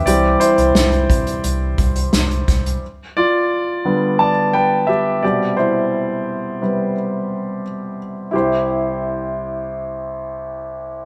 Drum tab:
HH |x-xxxxxxx-xxxxxx|----------------|----------------|----------------|
SD |----o-------o-o-|----------------|----------------|----------------|
BD |------o---o---o-|----------------|----------------|----------------|